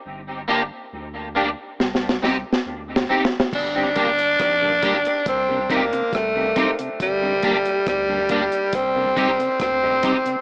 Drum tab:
CC |------------------------------------------------|x-----------------------------------------------|------------------------------------------------|
HH |------------------------------------------------|------x--x--x-----x--x--x-----x--x--x-----x--x--|x-----x--x--x-----x--x--x-----x--x--x-----x--x--|
SD |------------------------o-o-o-o---o-----o---o-o-|------------r-----------r-----------r-----------|------------r-----------r-----------r-----------|
BD |------------------------------------------------|o-----o-----o-----o-----o-----o-----o-----o-----|o-----o-----o-----o-----o-----o-----o-----o-----|